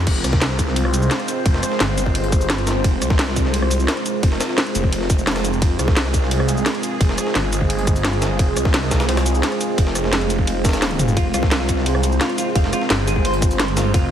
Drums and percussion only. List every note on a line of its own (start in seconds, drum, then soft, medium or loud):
0.07 kick loud
0.07 closed hi-hat medium
0.07 crash loud
0.07 ride medium
0.24 cross-stick soft
0.24 closed hi-hat medium
0.24 cabasa medium
0.33 kick loud
0.33 snare medium
0.42 snare loud
0.42 closed hi-hat loud
0.42 closed hi-hat medium
0.42 ride medium
0.50 snare medium
0.59 kick medium
0.59 closed hi-hat medium
0.59 cabasa medium
0.68 snare soft
0.76 closed hi-hat loud
0.76 closed hi-hat medium
0.76 ride medium
0.85 cross-stick soft
0.94 closed hi-hat medium
0.94 cabasa medium
1.02 cabasa soft
1.11 snare loud
1.11 closed hi-hat medium
1.11 ride medium
1.20 cross-stick soft
1.20 closed hi-hat soft
1.28 closed hi-hat medium
1.28 cabasa medium
1.46 kick loud
1.46 closed hi-hat medium
1.46 ride medium
1.54 snare medium
1.63 cross-stick soft
1.63 closed hi-hat medium
1.63 cabasa medium
1.72 snare soft
1.80 snare loud
1.80 closed hi-hat medium
1.80 ride medium
1.98 closed hi-hat medium
1.98 cabasa medium
2.06 kick medium
2.15 closed hi-hat medium
2.15 closed hi-hat loud
2.15 ride medium
2.24 closed hi-hat medium
2.32 kick loud
2.32 closed hi-hat medium
2.32 cabasa medium
2.41 closed hi-hat medium
2.41 cabasa soft
2.50 snare loud
2.50 closed hi-hat medium
2.50 ride medium
2.58 closed hi-hat soft
2.67 snare loud
2.67 closed hi-hat medium
2.67 cabasa medium
2.84 kick loud
2.84 closed hi-hat medium
2.84 ride medium
3.02 cross-stick soft
3.02 closed hi-hat medium
3.02 cabasa medium
3.10 kick loud
3.10 snare medium
3.19 snare loud
3.19 closed hi-hat medium
3.19 ride medium
3.28 snare medium
3.36 kick medium
3.36 closed hi-hat medium
3.36 cabasa medium
3.45 snare soft
3.54 closed hi-hat medium
3.54 ride medium
3.62 cross-stick medium
3.71 closed hi-hat medium
3.71 cabasa medium
3.80 cabasa soft
3.88 snare loud
3.88 closed hi-hat medium
3.88 ride medium
3.97 cross-stick soft
3.97 closed hi-hat soft
4.06 closed hi-hat medium
4.06 cabasa medium
4.23 kick loud
4.23 closed hi-hat medium
4.23 ride medium
4.32 snare medium
4.40 cross-stick soft
4.40 snare loud
4.40 closed hi-hat medium
4.40 cabasa medium
4.49 snare soft
4.58 snare loud
4.58 closed hi-hat medium
4.58 ride medium
4.66 snare soft
4.66 closed hi-hat soft
4.75 closed hi-hat medium
4.75 cabasa medium
4.84 kick medium
4.92 closed hi-hat medium
4.92 ride medium
5.01 snare soft
5.10 kick loud
5.10 closed hi-hat medium
5.10 cabasa medium
5.19 cabasa soft
5.27 snare medium
5.27 snare loud
5.27 closed hi-hat medium
5.27 ride medium
5.32 snare medium
5.32 closed hi-hat medium
5.36 cross-stick soft
5.36 snare loud
5.36 closed hi-hat medium
5.36 closed hi-hat soft
5.45 closed hi-hat medium
5.45 cabasa medium
5.53 cabasa soft
5.62 kick loud
5.62 closed hi-hat medium
5.62 ride medium
5.79 cross-stick soft
5.79 closed hi-hat medium
5.79 cabasa medium
5.88 kick loud
5.88 snare medium
5.96 snare loud
5.96 closed hi-hat medium
5.96 closed hi-hat loud
5.96 ride medium
6.05 snare medium
6.14 kick medium
6.14 closed hi-hat medium
6.14 cabasa medium
6.23 snare soft
6.31 closed hi-hat medium
6.31 closed hi-hat loud
6.31 ride medium
6.40 cross-stick soft
6.49 closed hi-hat medium
6.49 cabasa medium
6.57 cabasa soft
6.66 snare loud
6.66 closed hi-hat medium
6.66 ride medium
6.75 cross-stick soft
6.75 closed hi-hat soft
6.83 closed hi-hat medium
6.83 cabasa medium
7.01 kick loud
7.01 closed hi-hat medium
7.01 closed hi-hat loud
7.01 ride medium
7.09 snare medium
7.18 cross-stick soft
7.18 closed hi-hat medium
7.18 cabasa medium
7.27 snare soft
7.35 snare loud
7.35 closed hi-hat medium
7.35 ride medium
7.53 closed hi-hat medium
7.53 cabasa medium
7.61 kick medium
7.70 closed hi-hat medium
7.70 ride medium
7.79 closed hi-hat medium
7.87 kick loud
7.87 closed hi-hat medium
7.87 cabasa medium
7.96 closed hi-hat medium
7.96 cabasa soft
8.05 snare loud
8.05 closed hi-hat medium
8.05 ride medium
8.13 closed hi-hat soft
8.22 snare loud
8.22 closed hi-hat medium
8.22 cabasa medium
8.39 kick loud
8.39 closed hi-hat medium
8.39 closed hi-hat loud
8.39 ride medium
8.57 cross-stick soft
8.57 closed hi-hat medium
8.57 cabasa medium
8.65 kick loud
8.65 snare medium
8.74 snare loud
8.74 closed hi-hat medium
8.74 closed hi-hat loud
8.74 ride medium
8.83 snare medium
8.91 kick medium
8.91 snare loud
8.91 closed hi-hat medium
8.91 cabasa medium
9.00 snare loud
9.00 closed hi-hat medium
9.09 snare loud
9.09 closed hi-hat medium
9.09 ride medium
9.17 cross-stick soft
9.17 snare loud
9.17 closed hi-hat medium
9.26 closed hi-hat medium
9.26 cabasa medium
9.35 cabasa soft
9.43 snare loud
9.43 closed hi-hat medium
9.43 closed hi-hat loud
9.43 ride medium
9.52 cross-stick soft
9.52 closed hi-hat soft
9.61 closed hi-hat medium
9.61 cabasa medium
9.78 kick loud
9.78 closed hi-hat loud
9.78 closed hi-hat medium
9.78 ride medium
9.87 snare medium
9.95 cross-stick soft
9.95 closed hi-hat medium
9.95 cabasa medium
10.04 snare soft
10.13 snare loud
10.13 closed hi-hat medium
10.13 closed hi-hat loud
10.13 ride medium
10.21 closed hi-hat soft
10.30 closed hi-hat medium
10.30 cabasa medium
10.39 kick medium
10.47 closed hi-hat medium
10.47 closed hi-hat loud
10.47 ride medium
10.65 kick loud
10.65 snare medium
10.65 closed hi-hat medium
10.65 cabasa medium
10.69 snare medium
10.69 closed hi-hat medium
10.73 snare loud
10.73 closed hi-hat medium
10.73 cabasa soft
10.82 snare loud
10.82 closed hi-hat medium
10.82 open hi-hat medium
10.82 ride medium
10.91 cross-stick soft
10.91 closed hi-hat soft
10.91 high tom medium
10.99 closed hi-hat medium
10.99 mid tom medium
10.99 cabasa medium
11.08 mid tom medium
11.08 cabasa soft
11.17 kick loud
11.17 closed hi-hat medium
11.17 closed hi-hat loud
11.17 ride medium
11.34 cross-stick soft
11.34 closed hi-hat medium
11.34 cabasa medium
11.43 kick loud
11.43 snare medium
11.51 snare loud
11.51 closed hi-hat medium
11.51 closed hi-hat loud
11.51 ride medium
11.60 snare medium
11.69 kick medium
11.69 closed hi-hat medium
11.69 cabasa medium
11.77 snare soft
11.86 closed hi-hat medium
11.86 closed hi-hat loud
11.86 ride medium
11.95 cross-stick medium
12.03 closed hi-hat medium
12.03 cabasa medium
12.12 cabasa soft
12.21 snare loud
12.21 closed hi-hat medium
12.21 ride medium
12.29 cross-stick soft
12.29 closed hi-hat soft
12.38 closed hi-hat medium
12.38 cabasa medium
12.55 kick loud
12.55 closed hi-hat medium
12.55 ride medium
12.64 snare medium
12.73 cross-stick soft
12.73 closed hi-hat medium
12.73 cabasa medium
12.81 snare soft
12.90 snare loud
12.90 closed hi-hat medium
12.90 closed hi-hat loud
12.90 ride medium
13.07 closed hi-hat medium
13.07 cabasa medium
13.16 kick medium
13.25 closed hi-hat medium
13.25 ride medium
13.34 closed hi-hat medium
13.42 kick loud
13.42 closed hi-hat medium
13.42 cabasa medium
13.51 closed hi-hat medium
13.51 cabasa soft
13.59 snare loud
13.59 closed hi-hat medium
13.59 ride medium
13.68 closed hi-hat soft
13.77 snare loud
13.77 closed hi-hat medium
13.77 cabasa medium
13.94 kick loud
13.94 closed hi-hat medium
13.94 ride medium